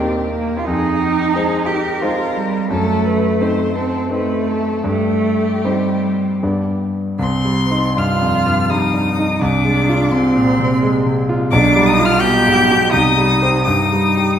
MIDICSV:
0, 0, Header, 1, 4, 480
1, 0, Start_track
1, 0, Key_signature, -3, "minor"
1, 0, Tempo, 690449
1, 461, Time_signature, 3, 2, 24, 8
1, 2852, Tempo, 746269
1, 3332, Tempo, 780234
1, 5252, Tempo, 707547
1, 8612, Tempo, 738007
1, 9566, End_track
2, 0, Start_track
2, 0, Title_t, "Violin"
2, 0, Program_c, 0, 40
2, 0, Note_on_c, 0, 67, 69
2, 446, Note_off_c, 0, 67, 0
2, 450, Note_on_c, 0, 68, 80
2, 694, Note_on_c, 0, 67, 69
2, 705, Note_off_c, 0, 68, 0
2, 926, Note_on_c, 0, 68, 71
2, 936, Note_off_c, 0, 67, 0
2, 1166, Note_on_c, 0, 70, 89
2, 1176, Note_off_c, 0, 68, 0
2, 1875, Note_off_c, 0, 70, 0
2, 1879, Note_on_c, 0, 69, 86
2, 2123, Note_on_c, 0, 71, 76
2, 2133, Note_off_c, 0, 69, 0
2, 2368, Note_on_c, 0, 72, 73
2, 2378, Note_off_c, 0, 71, 0
2, 2612, Note_on_c, 0, 69, 70
2, 2622, Note_off_c, 0, 72, 0
2, 2855, Note_off_c, 0, 69, 0
2, 2860, Note_on_c, 0, 71, 70
2, 3095, Note_on_c, 0, 69, 69
2, 3105, Note_off_c, 0, 71, 0
2, 3336, Note_on_c, 0, 67, 69
2, 3345, Note_off_c, 0, 69, 0
2, 4535, Note_off_c, 0, 67, 0
2, 4773, Note_on_c, 0, 84, 107
2, 5259, Note_on_c, 0, 89, 100
2, 5269, Note_off_c, 0, 84, 0
2, 5747, Note_on_c, 0, 87, 98
2, 5757, Note_off_c, 0, 89, 0
2, 6229, Note_off_c, 0, 87, 0
2, 6233, Note_on_c, 0, 86, 101
2, 6705, Note_on_c, 0, 84, 92
2, 6715, Note_off_c, 0, 86, 0
2, 7421, Note_off_c, 0, 84, 0
2, 7654, Note_on_c, 0, 86, 123
2, 7894, Note_on_c, 0, 87, 122
2, 7904, Note_off_c, 0, 86, 0
2, 8021, Note_on_c, 0, 89, 127
2, 8031, Note_off_c, 0, 87, 0
2, 8122, Note_on_c, 0, 91, 127
2, 8132, Note_off_c, 0, 89, 0
2, 8607, Note_off_c, 0, 91, 0
2, 8611, Note_on_c, 0, 87, 127
2, 9074, Note_off_c, 0, 87, 0
2, 9078, Note_on_c, 0, 87, 107
2, 9566, Note_off_c, 0, 87, 0
2, 9566, End_track
3, 0, Start_track
3, 0, Title_t, "Cello"
3, 0, Program_c, 1, 42
3, 0, Note_on_c, 1, 60, 68
3, 204, Note_off_c, 1, 60, 0
3, 208, Note_on_c, 1, 58, 82
3, 409, Note_on_c, 1, 65, 74
3, 419, Note_off_c, 1, 58, 0
3, 457, Note_on_c, 1, 63, 108
3, 467, Note_off_c, 1, 65, 0
3, 1155, Note_on_c, 1, 67, 82
3, 1166, Note_off_c, 1, 63, 0
3, 1407, Note_on_c, 1, 65, 71
3, 1417, Note_off_c, 1, 67, 0
3, 1641, Note_on_c, 1, 55, 82
3, 1652, Note_off_c, 1, 65, 0
3, 1870, Note_on_c, 1, 57, 93
3, 1881, Note_off_c, 1, 55, 0
3, 2602, Note_off_c, 1, 57, 0
3, 2606, Note_on_c, 1, 60, 78
3, 2847, Note_off_c, 1, 60, 0
3, 2855, Note_on_c, 1, 57, 81
3, 3324, Note_off_c, 1, 57, 0
3, 3333, Note_on_c, 1, 57, 96
3, 3831, Note_on_c, 1, 55, 76
3, 3841, Note_off_c, 1, 57, 0
3, 4303, Note_off_c, 1, 55, 0
3, 4772, Note_on_c, 1, 60, 81
3, 5230, Note_off_c, 1, 60, 0
3, 5263, Note_on_c, 1, 65, 109
3, 5754, Note_on_c, 1, 63, 76
3, 5764, Note_off_c, 1, 65, 0
3, 6237, Note_on_c, 1, 62, 97
3, 6247, Note_off_c, 1, 63, 0
3, 6718, Note_on_c, 1, 60, 108
3, 6728, Note_off_c, 1, 62, 0
3, 7428, Note_off_c, 1, 60, 0
3, 7664, Note_on_c, 1, 62, 124
3, 7903, Note_on_c, 1, 63, 105
3, 7914, Note_off_c, 1, 62, 0
3, 8016, Note_on_c, 1, 65, 115
3, 8026, Note_off_c, 1, 63, 0
3, 8135, Note_on_c, 1, 67, 127
3, 8145, Note_off_c, 1, 65, 0
3, 8607, Note_on_c, 1, 63, 101
3, 8617, Note_off_c, 1, 67, 0
3, 9069, Note_off_c, 1, 63, 0
3, 9073, Note_on_c, 1, 63, 101
3, 9566, Note_off_c, 1, 63, 0
3, 9566, End_track
4, 0, Start_track
4, 0, Title_t, "Grand piano"
4, 0, Program_c, 2, 0
4, 0, Control_c, 2, 64, 127
4, 0, Note_on_c, 2, 39, 60
4, 0, Note_on_c, 2, 58, 51
4, 0, Note_on_c, 2, 63, 50
4, 0, Note_on_c, 2, 67, 58
4, 438, Note_off_c, 2, 58, 0
4, 439, Note_off_c, 2, 63, 0
4, 439, Note_off_c, 2, 67, 0
4, 470, Note_on_c, 2, 41, 75
4, 473, Control_c, 2, 64, 0
4, 476, Note_off_c, 2, 39, 0
4, 600, Control_c, 2, 64, 127
4, 926, Note_off_c, 2, 41, 0
4, 937, Note_on_c, 2, 56, 56
4, 940, Note_on_c, 2, 63, 52
4, 947, Note_on_c, 2, 72, 59
4, 1377, Note_off_c, 2, 56, 0
4, 1378, Note_off_c, 2, 63, 0
4, 1382, Note_off_c, 2, 72, 0
4, 1405, Note_on_c, 2, 56, 47
4, 1409, Note_on_c, 2, 72, 61
4, 1410, Note_on_c, 2, 63, 52
4, 1851, Note_off_c, 2, 56, 0
4, 1853, Note_off_c, 2, 72, 0
4, 1854, Note_off_c, 2, 63, 0
4, 1881, Note_on_c, 2, 42, 76
4, 1891, Control_c, 2, 64, 0
4, 2000, Control_c, 2, 64, 127
4, 2351, Note_off_c, 2, 42, 0
4, 2369, Note_on_c, 2, 60, 53
4, 2369, Note_on_c, 2, 63, 52
4, 2375, Note_on_c, 2, 72, 58
4, 2828, Note_off_c, 2, 60, 0
4, 2828, Note_off_c, 2, 63, 0
4, 2831, Note_off_c, 2, 72, 0
4, 2852, Note_on_c, 2, 60, 48
4, 2854, Note_on_c, 2, 63, 46
4, 2856, Note_on_c, 2, 72, 49
4, 3307, Note_off_c, 2, 60, 0
4, 3308, Note_off_c, 2, 63, 0
4, 3309, Note_off_c, 2, 72, 0
4, 3325, Note_on_c, 2, 43, 66
4, 3345, Control_c, 2, 64, 0
4, 3470, Control_c, 2, 64, 127
4, 3804, Note_off_c, 2, 43, 0
4, 3822, Note_on_c, 2, 60, 45
4, 3822, Note_on_c, 2, 63, 45
4, 3826, Note_on_c, 2, 72, 53
4, 4274, Note_off_c, 2, 60, 0
4, 4274, Note_off_c, 2, 63, 0
4, 4276, Note_off_c, 2, 72, 0
4, 4303, Note_on_c, 2, 59, 43
4, 4304, Note_on_c, 2, 43, 61
4, 4306, Note_on_c, 2, 62, 38
4, 4310, Note_on_c, 2, 74, 42
4, 4311, Control_c, 2, 64, 0
4, 4407, Control_c, 2, 64, 127
4, 4746, Note_off_c, 2, 59, 0
4, 4747, Note_off_c, 2, 62, 0
4, 4750, Note_off_c, 2, 74, 0
4, 4757, Note_off_c, 2, 43, 0
4, 4771, Note_on_c, 2, 36, 76
4, 4780, Control_c, 2, 64, 0
4, 4890, Control_c, 2, 64, 127
4, 4931, Note_on_c, 2, 55, 54
4, 5091, Note_on_c, 2, 63, 59
4, 5191, Note_off_c, 2, 55, 0
4, 5251, Note_on_c, 2, 43, 60
4, 5353, Note_off_c, 2, 63, 0
4, 5419, Note_on_c, 2, 41, 53
4, 5518, Note_off_c, 2, 43, 0
4, 5584, Note_off_c, 2, 41, 0
4, 5586, Note_on_c, 2, 43, 56
4, 5744, Note_on_c, 2, 55, 59
4, 5846, Note_off_c, 2, 43, 0
4, 5907, Note_on_c, 2, 43, 49
4, 6004, Note_off_c, 2, 55, 0
4, 6076, Note_on_c, 2, 63, 62
4, 6165, Note_off_c, 2, 43, 0
4, 6204, Note_off_c, 2, 36, 0
4, 6231, Note_on_c, 2, 36, 90
4, 6233, Note_off_c, 2, 63, 0
4, 6241, Control_c, 2, 64, 0
4, 6354, Control_c, 2, 64, 127
4, 6391, Note_on_c, 2, 56, 60
4, 6557, Note_on_c, 2, 65, 75
4, 6646, Note_off_c, 2, 56, 0
4, 6707, Note_on_c, 2, 48, 65
4, 6810, Note_off_c, 2, 65, 0
4, 6870, Note_on_c, 2, 46, 64
4, 6966, Note_off_c, 2, 48, 0
4, 7030, Note_off_c, 2, 46, 0
4, 7033, Note_on_c, 2, 48, 78
4, 7191, Note_on_c, 2, 56, 78
4, 7285, Note_off_c, 2, 48, 0
4, 7349, Note_on_c, 2, 48, 77
4, 7440, Note_off_c, 2, 56, 0
4, 7506, Note_on_c, 2, 65, 81
4, 7596, Note_off_c, 2, 48, 0
4, 7630, Note_off_c, 2, 36, 0
4, 7659, Note_off_c, 2, 65, 0
4, 7663, Note_on_c, 2, 35, 104
4, 7669, Control_c, 2, 64, 0
4, 7777, Control_c, 2, 64, 127
4, 7824, Note_on_c, 2, 55, 80
4, 7981, Note_on_c, 2, 65, 82
4, 8075, Note_off_c, 2, 55, 0
4, 8143, Note_on_c, 2, 47, 74
4, 8234, Note_off_c, 2, 65, 0
4, 8306, Note_on_c, 2, 44, 75
4, 8395, Note_off_c, 2, 47, 0
4, 8459, Note_off_c, 2, 44, 0
4, 8464, Note_on_c, 2, 47, 81
4, 8589, Note_off_c, 2, 35, 0
4, 8617, Note_off_c, 2, 47, 0
4, 8618, Note_on_c, 2, 36, 89
4, 8626, Control_c, 2, 64, 0
4, 8746, Control_c, 2, 64, 127
4, 8775, Note_on_c, 2, 55, 66
4, 8936, Note_on_c, 2, 67, 62
4, 8938, Note_on_c, 2, 72, 69
4, 9023, Note_off_c, 2, 55, 0
4, 9073, Note_off_c, 2, 36, 0
4, 9075, Note_off_c, 2, 67, 0
4, 9076, Note_off_c, 2, 72, 0
4, 9095, Note_on_c, 2, 43, 80
4, 9097, Control_c, 2, 64, 0
4, 9208, Control_c, 2, 64, 127
4, 9262, Note_on_c, 2, 55, 56
4, 9424, Note_on_c, 2, 67, 61
4, 9516, Note_off_c, 2, 55, 0
4, 9566, Note_off_c, 2, 43, 0
4, 9566, Note_off_c, 2, 67, 0
4, 9566, End_track
0, 0, End_of_file